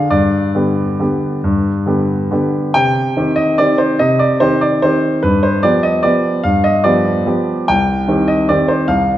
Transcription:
grand piano
Already playing: F5
0.10 G2 D5
0.55 D3 B3 G4
1.00 D3 B3 G4
1.44 G2
1.86 D3 B3 G4
2.31 D3 B3 G4
2.74 C3 G5
3.17 D#3 C4 G4
3.36 D#5
3.58 D#3 C4 G4 D5
3.78 C5
3.99 C3 D#5
4.19 D5
4.40 D#3 C4 G4 C5
4.61 D5
4.82 D#3 C4 G4 C5
5.23 G2 B4
5.43 C5
5.63 F3 B3 G4 D5
5.83 D#5
6.03 F3 B3 G4 D5
6.44 G2 F5
6.64 D#5
6.84 F3 B3 G4 D5
7.26 F3 B3 G4
7.68 C2 G5
8.08 D#3 C4 G4
8.28 D#5
8.49 D#3 C4 G4 D5
8.68 C5
8.88 C2 F5

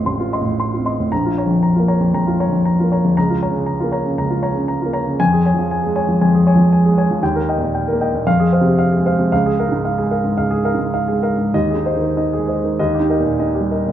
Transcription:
grand piano
Already playing: A1 A2 C4 F4 D#5 C6
0.06 A1 C6
0.20 F4
0.33 D#5 C6
0.41 A2
0.46 A2
0.60 C6
0.73 F4
0.77 C4
0.86 D#5 C6
1.00 A2
1.12 A#1 A#5
1.25 F4
1.38 C#5 A#5
1.46 F2
1.50 F2
1.63 A#5
1.75 F4
1.79 A#3
1.88 C#5 A#5
2.01 F2
2.14 F2 A#5
2.27 F4
2.40 C#5 A#5
2.48 F2
2.53 F2
2.65 A#5
2.79 F4
2.84 A#3
2.92 C#5 A#5
3.05 F2
3.17 C#2 A#5
3.30 F4
3.42 C#5 A#5
3.51 C#3
3.55 C#3
3.66 A#5
3.80 A#3 F4
3.92 C#5 A#5
4.06 C#3
4.18 C#2 A#5
4.30 F4
4.43 C#5 A#5
4.50 C#3
4.56 C#3
4.68 A#5
4.81 F4
4.86 A#3
4.93 C#5 A#5
5.07 C#3
5.20 F2 G#5
5.33 G#4
5.46 C#5 G#5
5.54 F3
5.59 F3
5.71 G#5
5.83 G#3 G#4
5.96 C#5 G#5
6.09 F3
6.21 F2 G#5
6.35 G#4
6.47 C#5 G#5
6.55 F3
6.73 G#5
6.85 G#3 G#4
6.98 C#5 G#5
7.11 F3
7.23 D#2 G5
7.36 A#4
7.49 D#5 G5
7.58 A#2
7.62 A#2
7.75 G5
7.88 A#4
7.93 A#3
8.01 D#5 G5
8.14 A#2
8.27 F2 F5
8.40 G#4
8.52 C5 F5
8.61 C3
8.66 C3
8.79 F5
8.92 G#4
8.97 G#3
9.06 C5 F5
9.19 C3
9.32 C#2 F5
9.46 G#4
9.59 A#4 F5
9.69 G#2
9.85 F5
9.98 G#4
10.03 G#3
10.11 A#4 F5
10.24 G#2
10.37 C#2 F5
10.51 G#4
10.65 A#4 F5
10.74 G#2
10.79 G#2
10.94 F5
11.08 G#4
11.12 G#3
11.22 A#4 F5
11.38 G#2
11.54 D#2 D#5
11.71 G#4
11.75 D#4
11.86 C5 D#5
11.97 D#3
12.02 D#3
12.17 D#4 D#5
12.33 G#4
12.39 G#3
12.48 C5 D#5
12.64 D#3
12.79 D#2 D#5
12.94 G4
13.00 D#4
13.10 A#4 D#5
13.19 A#2
13.24 A#2
13.39 D#4 D#5
13.54 G4
13.61 G3
13.71 A#4 D#5
13.86 A#2

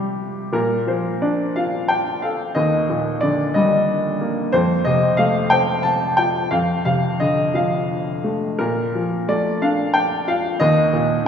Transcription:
upright piano
Already playing: C3 G3 F4 G4 F5
0.52 A#2 A#4
0.87 F3 C5
1.22 D4 D5
1.56 F4 F5
1.88 G5
2.22 A4 F5
2.55 D#2 D#5
2.89 A#2
3.21 D3 D5
3.54 G3 D#5
4.21 A#3
4.52 F2 C5
4.85 C3 D#5
5.17 A3 F5
5.50 C4 G5
5.83 A5
6.17 F4 G5
6.51 F2 F5
6.85 C3 F5
7.20 D3 D#5
7.54 F3 F5
8.24 A3
8.59 A#2 A#4
8.95 F3
9.28 A3 D5
9.62 D4 F5
9.94 G5
10.28 F4 F5
10.60 D#2 D#5
10.93 A#2

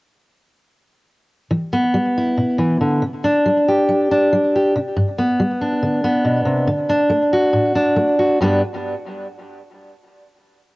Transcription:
steel-string acoustic guitar
1.51 E3
1.73 B3
1.94 G3
2.18 E4
2.38 B2
2.58 E3
2.81 D3
3.02 C3
3.24 D4
3.46 G3
3.68 G4
3.89 G3
4.11 D4
4.33 G3
4.56 G4
4.76 C3
4.97 G2
5.18 B3
5.40 G3
5.61 D4
5.83 D3
6.04 B3
6.25 B2
6.45 C3
6.67 D3
6.89 D4
7.10 A3
7.33 F#4
7.53 A2
7.75 D4
7.96 A3
8.19 F#4
8.41 G2 G3 B3 D4 B4

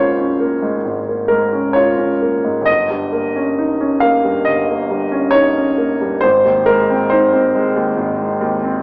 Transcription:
grand piano
Already playing: G#1 G#2 A#3 C#4 F4 C5 C#5
0.19 C#4
0.40 A#3
0.63 G#2
0.85 G#1
1.09 A#3
1.28 G#2 A#4
1.53 C#4
1.73 F4 C#5
1.99 C#4
2.22 A#3
2.45 G#2
2.61 G1
2.66 D#5
2.90 G2
3.13 A#3
3.36 C#4
3.58 D#4
3.81 C#4
4.00 A#3 F5
4.24 G2
4.45 G1 D#5
4.69 A#3
4.91 G2
5.12 C#4
5.31 D#4 C#5
5.56 C#4
5.78 A#3
6.01 G2
6.20 G#1 C5
6.45 D#2
6.66 G#3 A#4
6.90 C4
7.10 D#4 C5
7.33 C4
7.55 G#3
7.76 D#2
7.97 G#1
8.19 G#3
8.41 D#2
8.62 C4

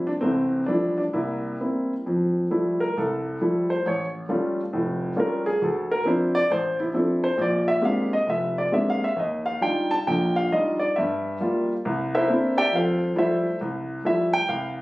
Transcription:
grand piano
Already playing: C4
0.07 D4
0.21 C2 E3 A3 C4
0.66 F3 G3 A3 D4 E4
0.98 D4
1.13 C2 G3 A#3 E4
1.61 A#3 C4 E4
2.06 F2
2.50 F3 G3 A3 E4
2.80 A#4
2.97 C2 A4
3.41 F3 G3 A3 E4
3.70 C5
3.86 A1 C#5
4.29 G3 A3 C#4 F4
4.73 F1 A2
5.16 G3 A3 C#4 F4 A#4
5.46 G#4
5.62 D2 A4
5.91 A#4
6.05 F3 C4 D4 E4 C5
6.35 D5
6.50 A1 C5
6.80 E4
6.94 F3 C4 D4 E4 A4
7.24 C5
7.37 A#1
7.42 D5
7.68 E5
7.81 G#3 A#3 C4 D4 G4 F5
8.13 D#5
8.26 F1 E5
8.58 D5
8.72 G#3 A#3 C4 D4 G4 E5
8.90 F5
9.04 E5
9.16 D#2 D#5
9.46 F5
9.61 G3 D4 D#4 F4 G5
9.91 A5
10.07 A#1 D3 G5
10.36 F5
10.52 G3 D4 D#4 F4 D#5
10.79 D5
10.96 G2 E5
11.41 G3 A#3 F4
11.85 C2
12.15 E4 A#4 C5 E5
12.29 A3 A#3 C4 D4 E4
12.58 G4 D5 E5 G5
12.72 F2 C5 F5
12.76 F4 A4
13.15 F3 G3 A3 E4 A4 C5 E5
13.61 C2
14.05 F3 G3 A3 E4 E5
14.33 G5
14.48 C2 F5

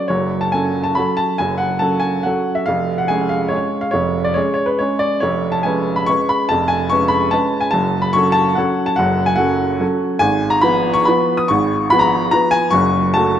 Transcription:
upright piano
0.08 F#1 F#2 C#5
0.41 A5
0.52 F#3 C#4 A4 G#5
0.83 A5
0.95 F#3 C#4 A4 B5
1.17 A5
1.38 F#1 F#2 G#5
1.58 F#5
1.79 F#3 C#4 A4 A5
2.00 G#5
2.23 F#3 C#4 A4 F#5
2.55 E5
2.66 F1 F2 F5
2.98 F#5
3.08 G#3 C#4 G#4 G#5
3.29 F5
3.48 G#3 C#4 G#4 C#5
3.81 F5
3.91 F1 F2 C#5
4.24 D5
4.34 G#3 C#4 G#4 C#5
4.54 C#5
4.66 B4
4.79 G#3 C#4 G#4 C#5
4.99 D5
5.20 F1 F2 C#5
5.52 A5
5.63 G#3 C#4 B4 G#5
5.96 B5
6.06 G#3 C#4 B4 C#6
6.29 B5
6.49 F1 F2 A5
6.68 G#5
6.89 G#3 C#4 B4 C#6
7.08 B5
7.31 G#3 C#4 B4 A5
7.60 G#5
7.71 F#1 F#2 A5
8.02 B5
8.13 F#3 C#4 A4 C#6
8.32 A5
8.55 F#3 C#4 A4 F#5
8.86 A5
8.96 F#1 F#2 F#5
9.26 G#5
9.36 F#3 C#4 A4 F#5
9.80 F#3 C#4 A4
10.19 G#1 G#2 G#5
10.50 A#5
10.61 F3 B3 B4 B5
10.94 C#6
11.05 F3 B3 B4 B5
11.37 D#6
11.48 G#1 G#2 C#6
11.90 F3 B3 B4 B5
11.99 A#5 B5
12.31 F3 B3 B4 A#5
12.51 G#5
12.71 F#1 F#2 C#6
13.14 F#3 A3 F#4 A5

